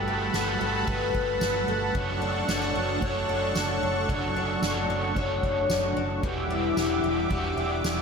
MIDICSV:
0, 0, Header, 1, 6, 480
1, 0, Start_track
1, 0, Key_signature, 2, "major"
1, 0, Tempo, 535714
1, 1748, Time_signature, 4, 2, 24, 8
1, 7185, End_track
2, 0, Start_track
2, 0, Title_t, "Analog synth pad"
2, 0, Program_c, 0, 89
2, 0, Note_on_c, 0, 69, 81
2, 0, Note_on_c, 0, 78, 65
2, 0, Note_on_c, 0, 81, 67
2, 0, Note_on_c, 0, 83, 82
2, 1727, Note_off_c, 0, 69, 0
2, 1727, Note_off_c, 0, 81, 0
2, 1728, Note_off_c, 0, 83, 0
2, 1746, Note_on_c, 0, 69, 77
2, 1749, Note_on_c, 0, 85, 80
2, 1750, Note_on_c, 0, 62, 60
2, 5551, Note_off_c, 0, 69, 0
2, 5553, Note_off_c, 0, 62, 0
2, 5553, Note_off_c, 0, 85, 0
2, 5587, Note_on_c, 0, 86, 84
2, 5588, Note_on_c, 0, 55, 74
2, 5589, Note_on_c, 0, 76, 70
2, 7185, Note_off_c, 0, 55, 0
2, 7185, Note_off_c, 0, 76, 0
2, 7185, Note_off_c, 0, 78, 0
2, 7185, Note_off_c, 0, 86, 0
2, 7185, End_track
3, 0, Start_track
3, 0, Title_t, "Overdriven electric guitar"
3, 0, Program_c, 1, 29
3, 0, Note_on_c, 1, 55, 75
3, 0, Note_on_c, 1, 57, 85
3, 0, Note_on_c, 1, 66, 78
3, 0, Note_on_c, 1, 71, 71
3, 287, Note_off_c, 1, 55, 0
3, 298, Note_on_c, 1, 55, 68
3, 307, Note_off_c, 1, 57, 0
3, 310, Note_on_c, 1, 57, 73
3, 314, Note_off_c, 1, 66, 0
3, 315, Note_off_c, 1, 71, 0
3, 318, Note_on_c, 1, 66, 77
3, 330, Note_on_c, 1, 71, 80
3, 760, Note_off_c, 1, 55, 0
3, 771, Note_on_c, 1, 55, 77
3, 792, Note_off_c, 1, 57, 0
3, 796, Note_on_c, 1, 57, 70
3, 798, Note_off_c, 1, 66, 0
3, 799, Note_off_c, 1, 71, 0
3, 817, Note_on_c, 1, 66, 76
3, 837, Note_on_c, 1, 71, 79
3, 1739, Note_off_c, 1, 55, 0
3, 1740, Note_on_c, 1, 42, 79
3, 1748, Note_on_c, 1, 54, 68
3, 1750, Note_off_c, 1, 57, 0
3, 1750, Note_on_c, 1, 57, 80
3, 1755, Note_on_c, 1, 62, 85
3, 1756, Note_off_c, 1, 66, 0
3, 1759, Note_off_c, 1, 71, 0
3, 1760, Note_on_c, 1, 66, 82
3, 1762, Note_on_c, 1, 73, 81
3, 2206, Note_off_c, 1, 57, 0
3, 2216, Note_on_c, 1, 57, 78
3, 2224, Note_off_c, 1, 42, 0
3, 2226, Note_off_c, 1, 62, 0
3, 2229, Note_on_c, 1, 62, 64
3, 2235, Note_off_c, 1, 73, 0
3, 2236, Note_off_c, 1, 66, 0
3, 2239, Note_on_c, 1, 66, 68
3, 2250, Note_on_c, 1, 73, 71
3, 2674, Note_off_c, 1, 57, 0
3, 2685, Note_on_c, 1, 57, 69
3, 2707, Note_off_c, 1, 62, 0
3, 2711, Note_on_c, 1, 62, 72
3, 2719, Note_off_c, 1, 73, 0
3, 2729, Note_off_c, 1, 66, 0
3, 2733, Note_on_c, 1, 66, 72
3, 2752, Note_on_c, 1, 73, 74
3, 3654, Note_off_c, 1, 57, 0
3, 3655, Note_on_c, 1, 42, 68
3, 3656, Note_off_c, 1, 54, 0
3, 3660, Note_on_c, 1, 54, 78
3, 3664, Note_on_c, 1, 57, 72
3, 3666, Note_off_c, 1, 73, 0
3, 3668, Note_off_c, 1, 62, 0
3, 3669, Note_off_c, 1, 66, 0
3, 3671, Note_on_c, 1, 62, 74
3, 3672, Note_on_c, 1, 66, 84
3, 3677, Note_on_c, 1, 73, 92
3, 4128, Note_off_c, 1, 57, 0
3, 4138, Note_on_c, 1, 57, 66
3, 4142, Note_off_c, 1, 42, 0
3, 4149, Note_off_c, 1, 62, 0
3, 4152, Note_on_c, 1, 62, 68
3, 4153, Note_off_c, 1, 73, 0
3, 4156, Note_off_c, 1, 66, 0
3, 4159, Note_on_c, 1, 66, 65
3, 4170, Note_on_c, 1, 73, 70
3, 4596, Note_off_c, 1, 57, 0
3, 4607, Note_on_c, 1, 57, 71
3, 4630, Note_off_c, 1, 62, 0
3, 4633, Note_on_c, 1, 62, 69
3, 4639, Note_off_c, 1, 73, 0
3, 4651, Note_off_c, 1, 66, 0
3, 4655, Note_on_c, 1, 66, 71
3, 4675, Note_on_c, 1, 73, 78
3, 5577, Note_off_c, 1, 57, 0
3, 5585, Note_on_c, 1, 52, 65
3, 5588, Note_off_c, 1, 62, 0
3, 5592, Note_on_c, 1, 62, 75
3, 5595, Note_off_c, 1, 66, 0
3, 5599, Note_on_c, 1, 67, 72
3, 5601, Note_off_c, 1, 73, 0
3, 5605, Note_on_c, 1, 66, 74
3, 5612, Note_off_c, 1, 54, 0
3, 6048, Note_off_c, 1, 52, 0
3, 6059, Note_on_c, 1, 52, 62
3, 6068, Note_off_c, 1, 62, 0
3, 6072, Note_on_c, 1, 62, 71
3, 6078, Note_off_c, 1, 67, 0
3, 6082, Note_on_c, 1, 67, 73
3, 6086, Note_off_c, 1, 66, 0
3, 6091, Note_on_c, 1, 66, 81
3, 6515, Note_off_c, 1, 52, 0
3, 6526, Note_on_c, 1, 52, 62
3, 6550, Note_off_c, 1, 62, 0
3, 6554, Note_on_c, 1, 62, 73
3, 6569, Note_off_c, 1, 67, 0
3, 6572, Note_on_c, 1, 67, 80
3, 6591, Note_off_c, 1, 66, 0
3, 6595, Note_on_c, 1, 66, 88
3, 7185, Note_off_c, 1, 52, 0
3, 7185, Note_off_c, 1, 62, 0
3, 7185, Note_off_c, 1, 66, 0
3, 7185, Note_off_c, 1, 67, 0
3, 7185, End_track
4, 0, Start_track
4, 0, Title_t, "Twelve-string acoustic guitar"
4, 0, Program_c, 2, 25
4, 0, Note_on_c, 2, 55, 75
4, 0, Note_on_c, 2, 66, 68
4, 0, Note_on_c, 2, 67, 61
4, 67, Note_on_c, 2, 57, 56
4, 94, Note_off_c, 2, 67, 0
4, 307, Note_off_c, 2, 66, 0
4, 307, Note_on_c, 2, 66, 60
4, 542, Note_off_c, 2, 57, 0
4, 545, Note_on_c, 2, 57, 64
4, 784, Note_on_c, 2, 71, 75
4, 1022, Note_off_c, 2, 57, 0
4, 1026, Note_on_c, 2, 57, 61
4, 1263, Note_off_c, 2, 66, 0
4, 1267, Note_on_c, 2, 66, 58
4, 1502, Note_off_c, 2, 57, 0
4, 1505, Note_on_c, 2, 57, 62
4, 1745, Note_on_c, 2, 42, 80
4, 1748, Note_off_c, 2, 55, 0
4, 1794, Note_off_c, 2, 71, 0
4, 1982, Note_off_c, 2, 57, 0
4, 1986, Note_on_c, 2, 62, 62
4, 2223, Note_off_c, 2, 66, 0
4, 2227, Note_on_c, 2, 64, 64
4, 2344, Note_off_c, 2, 64, 0
4, 2344, Note_on_c, 2, 66, 54
4, 2464, Note_off_c, 2, 62, 0
4, 2467, Note_on_c, 2, 62, 59
4, 2707, Note_on_c, 2, 73, 78
4, 2944, Note_off_c, 2, 62, 0
4, 2947, Note_on_c, 2, 62, 60
4, 3177, Note_off_c, 2, 66, 0
4, 3188, Note_on_c, 2, 66, 60
4, 3425, Note_off_c, 2, 62, 0
4, 3429, Note_on_c, 2, 62, 57
4, 3659, Note_off_c, 2, 42, 0
4, 3669, Note_on_c, 2, 42, 82
4, 3906, Note_off_c, 2, 62, 0
4, 3909, Note_on_c, 2, 62, 65
4, 4146, Note_off_c, 2, 66, 0
4, 4149, Note_on_c, 2, 66, 62
4, 4385, Note_off_c, 2, 62, 0
4, 4389, Note_on_c, 2, 62, 57
4, 4616, Note_off_c, 2, 73, 0
4, 4627, Note_on_c, 2, 73, 72
4, 4865, Note_off_c, 2, 62, 0
4, 4869, Note_on_c, 2, 62, 59
4, 5103, Note_off_c, 2, 66, 0
4, 5107, Note_on_c, 2, 66, 63
4, 5341, Note_off_c, 2, 62, 0
4, 5345, Note_on_c, 2, 62, 64
4, 5585, Note_on_c, 2, 52, 82
4, 5589, Note_off_c, 2, 42, 0
4, 5635, Note_off_c, 2, 73, 0
4, 5824, Note_off_c, 2, 62, 0
4, 5827, Note_on_c, 2, 62, 59
4, 6063, Note_off_c, 2, 66, 0
4, 6066, Note_on_c, 2, 67, 57
4, 6302, Note_off_c, 2, 62, 0
4, 6305, Note_on_c, 2, 62, 62
4, 6545, Note_on_c, 2, 66, 71
4, 6783, Note_off_c, 2, 62, 0
4, 6786, Note_on_c, 2, 62, 62
4, 7025, Note_off_c, 2, 67, 0
4, 7028, Note_on_c, 2, 67, 56
4, 7185, Note_off_c, 2, 52, 0
4, 7185, Note_off_c, 2, 62, 0
4, 7185, Note_off_c, 2, 66, 0
4, 7185, Note_off_c, 2, 67, 0
4, 7185, End_track
5, 0, Start_track
5, 0, Title_t, "Fingered electric bass"
5, 0, Program_c, 3, 33
5, 0, Note_on_c, 3, 31, 98
5, 249, Note_off_c, 3, 31, 0
5, 310, Note_on_c, 3, 31, 101
5, 520, Note_off_c, 3, 31, 0
5, 548, Note_on_c, 3, 31, 91
5, 759, Note_off_c, 3, 31, 0
5, 787, Note_on_c, 3, 31, 97
5, 998, Note_off_c, 3, 31, 0
5, 1030, Note_on_c, 3, 31, 78
5, 1240, Note_off_c, 3, 31, 0
5, 1267, Note_on_c, 3, 31, 93
5, 1479, Note_off_c, 3, 31, 0
5, 1505, Note_on_c, 3, 31, 106
5, 1718, Note_off_c, 3, 31, 0
5, 1748, Note_on_c, 3, 30, 104
5, 2170, Note_off_c, 3, 30, 0
5, 2227, Note_on_c, 3, 30, 98
5, 2439, Note_off_c, 3, 30, 0
5, 2469, Note_on_c, 3, 30, 94
5, 2680, Note_off_c, 3, 30, 0
5, 2708, Note_on_c, 3, 30, 78
5, 2919, Note_off_c, 3, 30, 0
5, 2948, Note_on_c, 3, 30, 100
5, 3159, Note_off_c, 3, 30, 0
5, 3190, Note_on_c, 3, 30, 105
5, 3401, Note_off_c, 3, 30, 0
5, 3428, Note_on_c, 3, 30, 93
5, 3639, Note_off_c, 3, 30, 0
5, 3668, Note_on_c, 3, 30, 110
5, 4090, Note_off_c, 3, 30, 0
5, 4147, Note_on_c, 3, 30, 99
5, 4359, Note_off_c, 3, 30, 0
5, 4387, Note_on_c, 3, 30, 101
5, 4599, Note_off_c, 3, 30, 0
5, 4627, Note_on_c, 3, 30, 98
5, 4839, Note_off_c, 3, 30, 0
5, 4869, Note_on_c, 3, 30, 95
5, 5080, Note_off_c, 3, 30, 0
5, 5106, Note_on_c, 3, 30, 96
5, 5318, Note_off_c, 3, 30, 0
5, 5347, Note_on_c, 3, 30, 96
5, 5558, Note_off_c, 3, 30, 0
5, 5587, Note_on_c, 3, 28, 108
5, 6010, Note_off_c, 3, 28, 0
5, 6066, Note_on_c, 3, 28, 99
5, 6278, Note_off_c, 3, 28, 0
5, 6304, Note_on_c, 3, 28, 95
5, 6517, Note_off_c, 3, 28, 0
5, 6546, Note_on_c, 3, 28, 88
5, 6758, Note_off_c, 3, 28, 0
5, 6785, Note_on_c, 3, 28, 82
5, 6997, Note_off_c, 3, 28, 0
5, 7028, Note_on_c, 3, 28, 107
5, 7185, Note_off_c, 3, 28, 0
5, 7185, End_track
6, 0, Start_track
6, 0, Title_t, "Drums"
6, 302, Note_on_c, 9, 38, 92
6, 304, Note_on_c, 9, 54, 55
6, 306, Note_on_c, 9, 51, 59
6, 392, Note_off_c, 9, 38, 0
6, 394, Note_off_c, 9, 54, 0
6, 395, Note_off_c, 9, 51, 0
6, 787, Note_on_c, 9, 36, 89
6, 787, Note_on_c, 9, 51, 47
6, 876, Note_off_c, 9, 36, 0
6, 877, Note_off_c, 9, 51, 0
6, 1028, Note_on_c, 9, 36, 81
6, 1118, Note_off_c, 9, 36, 0
6, 1265, Note_on_c, 9, 54, 64
6, 1266, Note_on_c, 9, 38, 112
6, 1355, Note_off_c, 9, 54, 0
6, 1356, Note_off_c, 9, 38, 0
6, 1747, Note_on_c, 9, 36, 99
6, 1837, Note_off_c, 9, 36, 0
6, 2226, Note_on_c, 9, 38, 99
6, 2228, Note_on_c, 9, 54, 59
6, 2315, Note_off_c, 9, 38, 0
6, 2317, Note_off_c, 9, 54, 0
6, 2708, Note_on_c, 9, 36, 87
6, 2798, Note_off_c, 9, 36, 0
6, 3185, Note_on_c, 9, 54, 60
6, 3186, Note_on_c, 9, 38, 100
6, 3187, Note_on_c, 9, 51, 53
6, 3275, Note_off_c, 9, 54, 0
6, 3276, Note_off_c, 9, 38, 0
6, 3277, Note_off_c, 9, 51, 0
6, 3667, Note_on_c, 9, 36, 108
6, 3757, Note_off_c, 9, 36, 0
6, 4143, Note_on_c, 9, 38, 103
6, 4145, Note_on_c, 9, 54, 54
6, 4233, Note_off_c, 9, 38, 0
6, 4235, Note_off_c, 9, 54, 0
6, 4626, Note_on_c, 9, 36, 82
6, 4627, Note_on_c, 9, 51, 52
6, 4716, Note_off_c, 9, 36, 0
6, 4717, Note_off_c, 9, 51, 0
6, 4868, Note_on_c, 9, 36, 89
6, 4958, Note_off_c, 9, 36, 0
6, 5104, Note_on_c, 9, 54, 61
6, 5105, Note_on_c, 9, 38, 104
6, 5194, Note_off_c, 9, 54, 0
6, 5195, Note_off_c, 9, 38, 0
6, 5586, Note_on_c, 9, 36, 114
6, 5675, Note_off_c, 9, 36, 0
6, 6065, Note_on_c, 9, 38, 94
6, 6067, Note_on_c, 9, 54, 56
6, 6069, Note_on_c, 9, 51, 65
6, 6155, Note_off_c, 9, 38, 0
6, 6157, Note_off_c, 9, 54, 0
6, 6158, Note_off_c, 9, 51, 0
6, 6547, Note_on_c, 9, 36, 94
6, 6637, Note_off_c, 9, 36, 0
6, 7028, Note_on_c, 9, 54, 59
6, 7029, Note_on_c, 9, 38, 109
6, 7117, Note_off_c, 9, 54, 0
6, 7118, Note_off_c, 9, 38, 0
6, 7185, End_track
0, 0, End_of_file